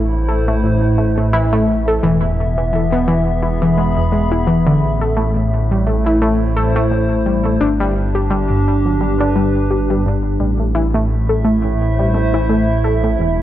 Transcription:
0.00 2.00 A1 medium
0.00 2.03 A2 loud
0.00 0.11 A3 loud
0.00 2.03 A3 medium
0.00 0.36 D4 medium
0.00 3.15 E4 medium
0.00 0.36 G4 medium
0.00 2.03 C5 medium
0.28 0.46 A4 medium
0.28 8.73 E5 medium
0.48 0.57 A3 loud
0.63 0.81 A2 medium
0.98 1.05 A3 medium
1.18 1.27 A3 medium
1.33 1.45 E4 loud
1.52 1.66 A3 loud
1.87 2.01 A4 medium
2.03 4.79 E1 medium
2.03 4.82 E3 medium
2.03 2.14 E3 loud
2.12 4.82 B3 medium
2.22 2.36 E2 medium
2.57 2.63 E3 medium
2.73 2.84 E3 medium
2.88 3.01 B3 loud
2.88 4.82 G#4 medium
3.07 3.25 E3 loud
3.30 5.94 B5 medium
3.42 3.60 E4 medium
3.62 3.71 E3 loud
3.77 3.89 G#3 medium
3.97 4.06 E2 medium
4.12 4.19 G#3 medium
4.32 4.41 E4 medium
4.47 4.59 E3 loud
4.67 4.72 D3 loud
4.82 7.58 A1 medium
4.82 7.61 A2 medium
4.94 7.61 A3 medium
5.01 5.15 A4 medium
5.17 5.28 A3 loud
5.36 5.50 A2 medium
5.44 8.73 E4 medium
5.71 5.85 G3 medium
5.86 5.98 A3 medium
6.06 6.15 E4 medium
6.06 7.61 C5 medium
6.21 6.39 A3 loud
6.56 6.74 A4 medium
6.76 6.85 A3 loud
6.91 7.09 A2 medium
7.26 7.44 G3 medium
7.46 7.55 A3 medium
7.61 10.37 G1 medium
7.61 7.73 D4 loud
7.61 11.52 D4 loud
7.75 11.52 G4 medium
7.80 7.94 G3 loud
8.15 8.29 G4 medium
8.31 8.42 G3 loud
8.50 8.64 G2 medium
8.85 8.99 F#3 medium
8.85 10.40 B4 medium
9.01 9.12 G3 medium
9.20 9.29 D4 loud
9.35 9.53 G3 loud
9.70 9.88 G4 medium
9.90 9.99 G3 loud
10.05 10.23 G2 medium
10.40 13.16 A1 medium
10.40 13.19 A2 medium
10.40 10.58 G3 medium
10.59 10.69 A3 medium
10.59 13.19 A3 medium
10.59 13.42 E4 loud
10.66 13.42 E5 medium
10.75 10.87 E4 loud
10.94 11.08 A3 loud
11.29 11.43 A4 medium
11.45 11.56 A3 loud
11.64 11.78 A2 medium
11.64 13.19 C5 medium
11.99 12.13 G3 medium
12.14 12.26 A3 medium
12.34 12.43 E4 loud
12.49 12.67 A3 loud
12.84 13.02 A4 medium
13.04 13.13 A3 loud
13.19 13.42 E1 medium
13.19 13.37 E2 medium
13.19 13.42 E3 medium

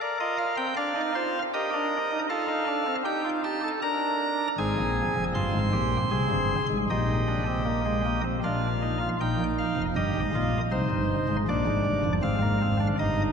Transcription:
0.01 0.67 A#4 medium
0.01 0.18 D5 medium
0.20 0.44 F4 medium
0.20 0.37 D#5 medium
0.38 0.55 F5 medium
0.57 0.74 C4 medium
0.57 0.74 G5 medium
0.76 0.93 D4 medium
0.76 1.01 D5 medium
0.76 1.42 F5 medium
0.95 1.12 D#4 medium
1.15 1.39 F4 medium
1.15 1.39 C5 medium
1.54 1.70 G4 medium
1.54 2.19 A#4 medium
1.54 2.19 D#5 medium
1.74 1.97 D4 medium
2.11 2.27 D#4 medium
2.29 2.46 F4 medium
2.29 2.95 A4 medium
2.29 2.95 F5 medium
2.48 2.65 D#4 medium
2.67 2.84 D4 medium
2.86 3.03 C4 medium
3.05 3.71 D#4 medium
3.05 3.22 G4 medium
3.05 3.29 G5 medium
3.25 3.41 F4 medium
3.44 3.60 G4 medium
3.44 3.68 A5 medium
3.64 3.80 A4 medium
3.82 4.48 D4 medium
3.82 4.48 A#4 medium
3.82 4.48 A#5 medium
4.58 4.74 G#1 medium
4.58 4.74 G#2 medium
4.58 6.56 C4 medium
4.58 5.24 G#4 medium
4.58 5.24 G#5 medium
4.78 5.01 A#1 medium
4.78 5.01 A#2 medium
5.15 5.32 F1 medium
5.15 5.32 F2 medium
5.34 5.51 G1 medium
5.34 5.51 G2 medium
5.34 5.58 F4 medium
5.34 6.66 C6 medium
5.54 5.70 G#1 medium
5.54 5.70 G#2 medium
5.72 5.96 A#1 medium
5.72 5.96 A#2 medium
5.72 5.97 G4 medium
6.11 6.28 C2 medium
6.11 6.27 C3 medium
6.11 6.77 G#4 medium
6.31 6.54 G1 medium
6.31 6.54 G2 medium
6.70 6.86 G#1 medium
6.70 6.86 G#2 medium
6.90 8.21 A#1 medium
6.90 8.21 A#2 medium
6.90 7.13 D#4 medium
6.90 8.21 G4 medium
6.90 8.21 D#5 medium
7.28 7.43 D4 medium
7.46 7.62 C4 medium
7.65 7.81 A#3 medium
7.85 8.01 G#3 medium
8.05 8.21 A#3 medium
8.24 8.40 C4 medium
8.44 9.09 A#1 medium
8.44 9.09 A#2 medium
8.44 8.67 D4 medium
8.44 8.99 F4 medium
8.44 9.09 F5 medium
8.82 8.98 D#4 medium
9.01 9.17 F4 medium
9.20 9.36 A#1 medium
9.20 9.36 A#2 medium
9.20 9.85 D#4 medium
9.20 9.44 G5 medium
9.39 9.62 A#1 medium
9.39 9.62 A#2 medium
9.58 9.81 F5 medium
9.76 9.92 F1 medium
9.76 9.92 F2 medium
9.95 10.12 G1 medium
9.95 10.11 G2 medium
9.95 10.19 G4 medium
9.95 10.61 D#5 medium
10.15 10.31 G#1 medium
10.15 10.31 G#2 medium
10.35 10.58 A#1 medium
10.35 10.58 A#2 medium
10.35 10.58 F4 medium
10.71 10.87 C2 medium
10.71 10.88 C3 medium
10.71 11.36 D#4 medium
10.71 11.36 C5 medium
10.90 11.14 G1 medium
10.90 11.14 G2 medium
11.29 11.44 G#1 medium
11.29 11.44 G#2 medium
11.48 11.64 A#1 medium
11.48 11.64 A#2 medium
11.48 12.13 D4 medium
11.48 12.13 D5 medium
11.67 11.82 G#1 medium
11.67 11.82 G#2 medium
11.86 12.01 G1 medium
11.86 12.01 G2 medium
12.05 12.20 F1 medium
12.05 12.20 F2 medium
12.22 12.87 G#1 medium
12.22 12.87 G#2 medium
12.22 12.38 C4 medium
12.22 12.87 F5 medium
12.42 12.58 A#3 medium
12.62 12.77 C4 medium
12.80 12.95 D4 medium
12.99 13.32 G1 medium
12.99 13.32 G2 medium
12.99 13.32 D#4 medium
12.99 13.22 D#5 medium

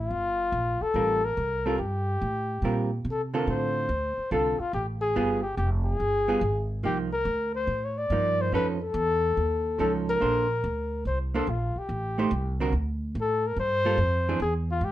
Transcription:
0.00 0.84 F4 loud
0.11 0.52 G1 medium
0.52 0.79 A#1 medium
0.81 1.26 A4 loud
0.81 muted upright bass stroke soft
0.94 1.36 A1 medium
0.94 1.21 G3 soft
0.94 1.21 C4 soft
0.94 1.21 F4 medium
0.94 1.21 A#4 medium
1.24 1.67 A#4 loud
1.37 1.77 C2 medium
1.66 1.78 G3 medium
1.66 1.78 C4 medium
1.66 1.79 F4 medium
1.66 1.78 A4 medium
1.66 1.79 A#4 medium
1.78 2.19 G2 medium
1.78 3.01 G4 medium
2.22 2.61 A2 medium
2.62 3.04 A#2 medium
2.62 2.89 G3 medium
2.62 2.90 C4 medium
2.62 2.90 F4 medium
2.62 2.90 A#4 medium
3.05 3.46 C3 medium
3.10 3.22 A4 medium
3.34 3.87 D3 medium
3.34 3.87 C4 medium
3.34 3.87 F4 medium
3.34 3.87 A4 medium
3.34 3.48 A#4 medium
3.47 3.88 A2 medium
3.47 4.29 C5 medium
3.89 4.15 D2 medium
4.18 muted upright bass stroke soft
4.31 4.58 C2 medium
4.31 4.57 D3 soft
4.31 4.57 C4 medium
4.31 4.57 F4 medium
4.31 4.57 A4 medium
4.31 4.61 A4 medium
4.59 4.74 F4 medium
4.59 muted upright bass stroke soft
4.73 5.14 A1 medium
4.73 4.87 G4 medium
5.01 5.41 G#4 medium
5.16 5.57 G1 medium
5.16 5.41 G3 medium
5.16 5.41 B3 medium
5.16 5.42 F4 medium
5.16 5.42 G#4 medium
5.42 5.56 G4 medium
5.57 5.98 F1 medium
5.57 5.70 G4 medium
5.85 6.66 G#4 loud
6.00 6.41 G1 medium
6.28 6.40 G3 medium
6.28 6.41 B3 medium
6.28 6.41 F4 medium
6.28 6.41 G#4 medium
6.41 6.82 G#1 medium
6.83 7.24 C2 medium
6.83 7.09 F3 medium
6.83 7.09 A#3 medium
6.83 7.10 D#4 medium
6.83 6.98 G4 medium
7.13 7.52 A#4 loud
7.25 7.66 D2 medium
7.55 7.86 C5 medium
7.67 8.09 A2 medium
7.85 7.99 C#5 medium
7.98 8.43 D5 loud
8.10 8.51 G2 medium
8.10 8.51 F3 medium
8.10 8.53 A#3 medium
8.10 8.52 D#4 medium
8.41 8.54 C5 loud
8.52 8.93 F2 medium
8.52 8.78 F3 medium
8.52 8.78 C#4 medium
8.52 8.78 D#4 medium
8.52 8.79 A4 medium
8.52 8.67 B4 medium
8.83 9.76 A4 loud
8.94 9.35 E2 medium
9.37 9.78 D#2 medium
9.79 10.20 C#2 medium
9.79 10.20 F3 medium
9.79 10.21 C#4 medium
9.79 10.21 D#4 medium
9.79 10.20 A4 medium
9.79 9.93 A4 medium
10.09 11.02 A#4 loud
10.20 10.62 A#1 medium
10.20 10.46 A#3 medium
10.20 10.46 D4 medium
10.20 10.46 A4 medium
10.20 10.47 C5 medium
10.64 11.04 D2 medium
11.05 11.46 C2 medium
11.05 11.19 C5 medium
11.34 11.46 A#3 medium
11.34 11.47 D4 medium
11.34 11.47 A4 medium
11.34 11.51 A4 medium
11.34 11.47 C5 medium
11.47 11.73 A#1 medium
11.47 11.80 F4 medium
11.76 12.61 G4 medium
11.76 muted upright bass stroke soft
11.89 12.30 A1 medium
12.18 12.30 A3 medium
12.18 12.30 D#4 medium
12.18 12.31 G4 medium
12.18 12.31 C5 medium
12.31 12.72 C2 medium
12.60 12.72 D3 medium
12.60 12.72 C4 medium
12.60 12.73 F#4 medium
12.60 12.73 A#4 medium
12.72 13.13 D2 medium
13.15 13.56 A2 medium
13.21 13.48 A4 medium
13.47 13.59 A#4 medium
13.56 13.97 G2 medium
13.56 14.38 C5 loud
13.85 13.97 G3 medium
13.85 13.98 A#3 medium
13.85 13.98 F4 medium
13.85 13.98 A4 medium
13.98 14.39 F2 medium
14.29 14.40 E3 medium
14.29 14.40 C4 medium
14.29 14.40 D4 medium
14.29 14.40 G#4 medium
14.40 14.80 E2 medium
14.40 14.54 G#4 medium
14.71 14.86 F4 medium
14.81 14.92 G#2 medium
14.81 14.92 G4 medium

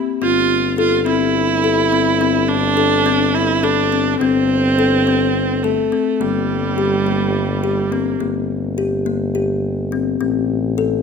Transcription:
0.21 4.17 G1 medium
0.21 0.54 C4 medium
0.21 0.75 F4 medium
0.78 1.05 F4 medium
0.78 0.95 A4 medium
1.06 1.39 C4 medium
1.06 2.50 E4 medium
1.64 1.80 A4 medium
1.92 2.09 C4 medium
2.21 2.54 C4 medium
2.49 3.36 D4 medium
2.77 2.94 A4 medium
3.06 3.39 C4 medium
3.34 3.64 E4 medium
3.63 4.19 D4 medium
3.63 3.80 A4 medium
3.92 4.09 C4 medium
4.20 5.90 G1 medium
4.20 5.64 C4 loud
4.20 4.54 C4 medium
4.79 4.95 A4 medium
5.07 5.40 C4 medium
5.63 6.22 A3 medium
5.63 5.80 A4 medium
5.92 6.09 C4 medium
6.20 8.17 G1 medium
6.20 7.93 G3 medium
6.20 6.54 A#3 medium
6.78 6.94 G4 medium
7.06 7.39 A#3 medium
7.64 7.80 G4 medium
7.91 8.20 A#3 medium
7.91 8.09 C4 medium
8.20 10.17 G1 medium
8.20 8.53 A#3 medium
8.78 8.94 G4 medium
9.06 9.23 A#3 medium
9.35 9.68 G4 medium
9.92 10.09 C4 medium
10.21 11.02 A1 medium
10.21 10.54 C4 medium
10.78 10.94 A4 medium

